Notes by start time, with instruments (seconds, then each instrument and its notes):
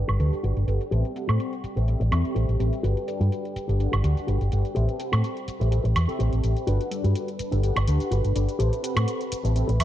Already playing: violin section G3 G4, analog polysynth D4 G4 A4 B4 F#5
0.08 fingered electric bass G1, muted clean electric guitar stroke, closed hi-hat, high woodblock, shaker
0.19 fingered electric bass D2, analog polysynth D4 G4 A4 B4 F#5, muted clean electric guitar stroke, closed hi-hat, shaker
0.33 closed hi-hat, shaker
0.43 fingered electric bass G1, clean electric guitar F#4 G4 B4, closed hi-hat, shaker
0.57 fingered electric bass G1, closed hi-hat, shaker
0.67 fingered electric bass G1, analog polysynth D4 G4 A4 B4 F#5, muted clean electric guitar stroke, closed hi-hat, shaker
0.81 closed hi-hat, shaker
0.91 fingered electric bass A1, analog polysynth C4 G4 A4 B4 E5, clean electric guitar G4 A4 C5, closed hi-hat, shaker
1.05 closed hi-hat, shaker
1.15 analog polysynth C4 G4 A4 F#5 B5, muted clean electric guitar stroke, closed hi-hat, shaker
1.28 fingered electric bass A2, clean electric guitar G4 A4 C5, closed hi-hat, high woodblock, shaker
1.40 closed hi-hat, shaker
1.53 closed hi-hat, shaker
1.64 muted fingered electric bass stroke, closed hi-hat, shaker
1.76 fingered electric bass A1, analog polysynth C4 G4 A4 B4 E5, muted clean electric guitar stroke, closed hi-hat, shaker
1.87 analog polysynth C4 G4 A4 B4 E5, muted clean electric guitar stroke, closed hi-hat, shaker
2.00 fingered electric bass A1, muted clean electric guitar stroke, closed hi-hat, shaker
2.11 fingered electric bass E2, analog polysynth C4 G4 A4 E5 B5, muted clean electric guitar stroke, closed hi-hat, high woodblock, shaker
2.25 muted fingered electric bass stroke, closed hi-hat, shaker
2.35 fingered electric bass A1, clean electric guitar G4 A4 C5, closed hi-hat, shaker
2.49 fingered electric bass A1, closed hi-hat, shaker
2.59 fingered electric bass A1, analog polysynth C4 G4 A4 B4 E5, muted clean electric guitar stroke, closed hi-hat, shaker
2.73 closed hi-hat, shaker
2.83 fingered electric bass G1, analog polysynth D4 G4 A4 B4 F#5, clean electric guitar F#4 G4 B4, closed hi-hat, shaker
2.97 closed hi-hat, shaker
3.07 analog polysynth G3 D4 A4 B4, muted clean electric guitar stroke, closed hi-hat, shaker
3.20 fingered electric bass G2, clean electric guitar F#4 G4 B4, closed hi-hat, shaker
3.32 closed hi-hat, shaker
3.45 closed hi-hat, shaker
3.56 muted fingered electric bass stroke, closed hi-hat, shaker
3.68 fingered electric bass G1, analog polysynth D4 G4 A4 B4 F#5, muted clean electric guitar stroke, closed hi-hat, shaker
3.79 analog polysynth D4 G4 A4 B4 F#5, muted clean electric guitar stroke, closed hi-hat, shaker
3.92 fingered electric bass G1, muted clean electric guitar stroke, closed hi-hat, high woodblock, shaker
4.03 fingered electric bass D2, analog polysynth D4 G4 A4 B4 F#5, muted clean electric guitar stroke, closed hi-hat, shaker
4.17 closed hi-hat, shaker
4.27 fingered electric bass G1, clean electric guitar F#4 G4 B4, closed hi-hat, shaker
4.41 fingered electric bass G1, closed hi-hat, shaker
4.51 fingered electric bass G1, analog polysynth D4 G4 A4 B4 F#5, muted clean electric guitar stroke, closed hi-hat, shaker
4.65 closed hi-hat, shaker
4.75 fingered electric bass A1, analog polysynth C4 G4 A4 B4 E5, clean electric guitar G4 A4 C5, closed hi-hat, shaker
4.89 closed hi-hat, shaker
4.99 analog polysynth C4 G4 A4 F#5 B5, muted clean electric guitar stroke, closed hi-hat, shaker
5.12 fingered electric bass A2, clean electric guitar G4 A4 C5, closed hi-hat, high woodblock, shaker
5.24 closed hi-hat, shaker
5.37 closed hi-hat, shaker
5.48 muted fingered electric bass stroke, closed hi-hat, shaker
5.60 fingered electric bass A1, analog polysynth C4 G4 A4 B4 E5, muted clean electric guitar stroke, closed hi-hat, shaker
5.71 analog polysynth C4 G4 A4 B4 E5, muted clean electric guitar stroke, closed hi-hat, shaker
5.84 fingered electric bass A1, muted clean electric guitar stroke, closed hi-hat, shaker
5.95 fingered electric bass E2, muted clean electric guitar stroke, closed hi-hat, high woodblock, shaker
6.07 analog polysynth C4 G4 A4 E5 B5, muted fingered electric bass stroke, closed hi-hat, shaker
6.19 fingered electric bass A1, clean electric guitar G4 A4 C5, closed hi-hat, shaker
6.33 fingered electric bass A1, closed hi-hat, shaker
6.43 fingered electric bass A1, muted clean electric guitar stroke, closed hi-hat, shaker
6.57 closed hi-hat, shaker
6.67 fingered electric bass G1, analog polysynth D4 G4 A4 B4 F#5, clean electric guitar F#4 G4 B4, violin section B4 B5, closed hi-hat, shaker
6.81 closed hi-hat, shaker
6.90 analog polysynth G3 D4 A4 B4, muted clean electric guitar stroke, closed hi-hat, shaker
7.04 fingered electric bass G2, clean electric guitar F#4 G4 B4, closed hi-hat, shaker
7.15 closed hi-hat, shaker
7.28 closed hi-hat, shaker
7.39 muted fingered electric bass stroke, closed hi-hat, shaker
7.51 fingered electric bass G1, analog polysynth D4 G4 A4 B4 F#5, muted clean electric guitar stroke, closed hi-hat, shaker
7.63 analog polysynth D4 G4 A4 B4 F#5, muted clean electric guitar stroke, closed hi-hat, shaker
7.76 fingered electric bass G1, muted clean electric guitar stroke, closed hi-hat, high woodblock, shaker
7.87 fingered electric bass D2, analog polysynth D4 G4 A4 B4 F#5, muted clean electric guitar stroke, closed hi-hat, shaker
8.00 closed hi-hat, shaker
8.11 fingered electric bass G1, clean electric guitar F#4 G4 B4, closed hi-hat, shaker
8.24 fingered electric bass G1, closed hi-hat, shaker
8.35 fingered electric bass G1, analog polysynth D4 G4 A4 B4 F#5, muted clean electric guitar stroke, closed hi-hat, shaker
8.49 closed hi-hat, shaker
8.59 fingered electric bass A1, analog polysynth C4 G4 A4 B4 E5, clean electric guitar G4 A4 C5, closed hi-hat, shaker
8.73 closed hi-hat, shaker
8.83 analog polysynth C4 G4 A4 F#5 B5, muted clean electric guitar stroke, closed hi-hat, shaker
8.96 fingered electric bass A2, clean electric guitar G4 A4 C5, closed hi-hat, high woodblock, shaker
9.08 closed hi-hat, shaker
9.21 closed hi-hat, shaker
9.32 muted fingered electric bass stroke, closed hi-hat, shaker
9.44 fingered electric bass A1, analog polysynth C4 G4 A4 B4 E5, muted clean electric guitar stroke, closed hi-hat, shaker
9.55 analog polysynth C4 G4 A4 B4 E5, muted clean electric guitar stroke, closed hi-hat, shaker
9.68 fingered electric bass A1, muted clean electric guitar stroke, closed hi-hat, shaker
9.79 fingered electric bass E2, analog polysynth C4 G4 A4 E5 B5, muted clean electric guitar stroke, closed hi-hat, high woodblock, shaker